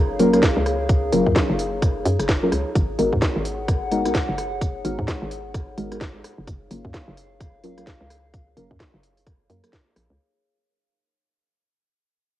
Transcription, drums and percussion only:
0.20 open hi-hat
0.34 cross-stick, closed hi-hat
0.43 kick, snare, closed hi-hat
0.66 cross-stick, open hi-hat
0.89 kick, closed hi-hat
1.13 open hi-hat
1.27 kick
1.36 kick, snare, closed hi-hat
1.59 open hi-hat
1.82 kick, cross-stick, closed hi-hat
2.06 open hi-hat
2.20 cross-stick, closed hi-hat
2.29 kick, snare, closed hi-hat
2.52 cross-stick, open hi-hat
2.75 kick, closed hi-hat
2.99 open hi-hat
3.13 kick
3.22 kick, snare, closed hi-hat
3.45 open hi-hat
3.68 kick, cross-stick, closed hi-hat
3.92 open hi-hat
4.06 cross-stick, closed hi-hat
4.15 kick, snare, closed hi-hat
4.38 cross-stick, open hi-hat
4.61 kick, closed hi-hat
4.85 open hi-hat
4.99 kick
5.08 kick, snare, closed hi-hat
5.31 open hi-hat
5.54 kick, cross-stick, closed hi-hat
5.78 open hi-hat
5.92 cross-stick, closed hi-hat
6.01 kick, snare, closed hi-hat
6.24 cross-stick, open hi-hat
6.47 kick, closed hi-hat
6.71 open hi-hat
6.85 kick
6.94 kick, snare, closed hi-hat
7.17 open hi-hat
7.40 kick, cross-stick, closed hi-hat
7.64 open hi-hat
7.78 cross-stick, closed hi-hat
7.87 kick, snare, closed hi-hat
8.10 cross-stick, open hi-hat
8.33 kick, closed hi-hat
8.57 open hi-hat
8.71 kick
8.80 kick, snare, closed hi-hat
9.03 open hi-hat
9.17 open hi-hat
9.26 kick, cross-stick, closed hi-hat
9.50 open hi-hat
9.64 cross-stick, closed hi-hat
9.73 kick, snare, closed hi-hat
9.96 cross-stick, open hi-hat

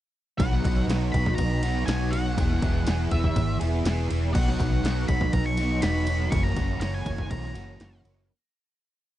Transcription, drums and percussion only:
0.40 kick, ride
0.53 snare
0.65 kick, ride
0.90 snare, ride
1.14 kick, ride
1.26 kick, snare
1.38 kick, ride
1.63 ride
1.88 snare, ride
2.13 ride
2.38 kick, ride
2.51 snare
2.62 kick, ride
2.87 snare, ride
3.11 kick, ride
3.24 kick, snare
3.36 kick, ride
3.61 ride
3.85 snare, ride
4.11 ride
4.35 kick, crash
4.48 snare
4.60 kick, ride
4.85 snare, ride
5.08 kick, ride
5.21 kick, snare
5.33 kick, ride
5.57 ride
5.82 snare, ride
6.07 ride
6.32 kick, ride
6.56 kick, ride
6.81 snare, ride
7.06 kick, ride
7.18 kick, snare
7.31 kick, ride
7.55 ride
7.80 snare, ride
8.05 ride

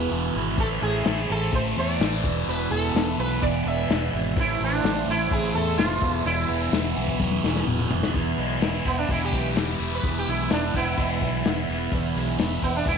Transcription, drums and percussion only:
0.58 kick, open hi-hat
1.05 snare, open hi-hat
1.53 kick, open hi-hat
2.00 snare, open hi-hat
2.24 kick
2.48 open hi-hat
2.96 snare, open hi-hat
3.42 kick, open hi-hat
3.90 snare, open hi-hat
4.37 kick, open hi-hat
4.84 snare, open hi-hat
5.31 kick, open hi-hat
5.79 snare, open hi-hat
6.02 kick
6.25 open hi-hat
6.72 snare, open hi-hat
7.08 kick
7.20 kick, high tom
7.31 high tom
7.44 snare
7.56 snare
7.67 mid tom
7.79 mid tom
7.90 floor tom
8.03 snare
8.14 kick, open hi-hat
8.38 open hi-hat
8.62 snare, open hi-hat
8.85 kick, open hi-hat
9.08 kick, open hi-hat
9.32 kick, open hi-hat
9.56 snare, open hi-hat
9.80 open hi-hat
10.04 kick, open hi-hat
10.27 open hi-hat
10.50 snare, open hi-hat
10.74 kick, open hi-hat
10.98 kick, open hi-hat
11.21 kick, open hi-hat
11.45 snare, open hi-hat
11.57 snare
11.68 open hi-hat
11.92 kick, open hi-hat
12.15 open hi-hat
12.39 snare, open hi-hat
12.62 kick, open hi-hat
12.85 kick, open hi-hat

